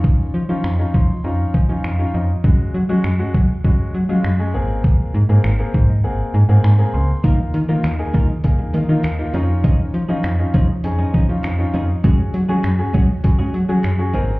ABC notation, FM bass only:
X:1
M:4/4
L:1/16
Q:1/4=100
K:Gblyd
V:1 name="FM bass" clef=bass
F,,2 F, F, F,,2 F,2 F,,2 F, F, F,,2 F,,2 | G,,2 G, G, G,,2 G,2 G,,2 G, G, G,,2 A,,,2- | A,,,2 A,, A,, A,,,2 A,,2 A,,,2 A,, A,, A,,2 D,,2 | E,,2 E, E, E,,2 E,2 E,,2 E, E, E,,2 F,,2- |
F,,2 F, F, F,,2 F,2 F,,2 F, F, F,,2 F,,2 | G,,2 G, G, G,,2 G,2 G,,2 G, G, G,,2 A,,,2 |]